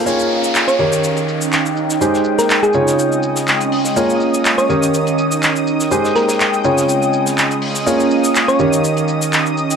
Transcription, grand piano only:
X:1
M:4/4
L:1/8
Q:"Swing 16ths" 1/4=123
K:Ebmix
V:1 name="Grand piano"
[B,FABd]3 [E,EGBd]4- [E,EGBd] | [A,EGAc]3 [D,DFAd]4- [D,DFAd] | [B,FABd]3 [E,EGBd]4- [E,EGBd] | [A,EGAc]3 [D,DFAd]4- [D,DFAd] |
[B,FABd]3 [E,EGBd]4- [E,EGBd] |]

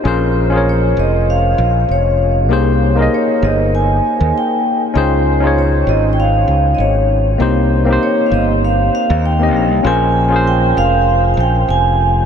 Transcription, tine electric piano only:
X:1
M:4/4
L:1/16
Q:"Swing 16ths" 1/4=98
K:Bbdor
V:1 name="Tine electric piano"
[DFABc]3 [DFABd]12- [DFABd] | [B,EGAc]3 [B,EABe]12- [B,EABe] | [DEFAc]3 [DEFAd]12- [DEFAd] | [B,CEGc]3 [B,CEGc]8- [B,CEGc]2 [B,CEGe]3 |
[DFABc]3 [DFABc]12- [DFABc] |]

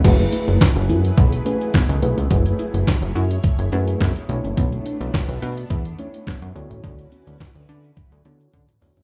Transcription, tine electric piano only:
X:1
M:4/4
L:1/16
Q:1/4=106
K:F#m
V:1 name="Tine electric piano"
[A,EGB]4 z6 [A,EGB]2 z2 [A,EGB] z | [A,EGB]4 z6 [A,EGB]2 z2 [A,DEc]2- | [A,DEc]4 z6 [A,DEc]2 z2 [B,EFc]2- | [B,EFc]4 z6 [B,EFc]2 z2 [B,EFc] z |]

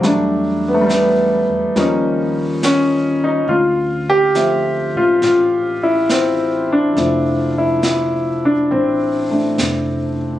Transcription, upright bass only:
X:1
M:4/4
L:1/8
Q:"Swing" 1/4=69
K:Dm
V:1 name="Upright bass" clef=bass
E,,3 E,, _E,,4 | D,,3 A,, A,,,4 | F,,,4 A,,,2 F,,,2 |]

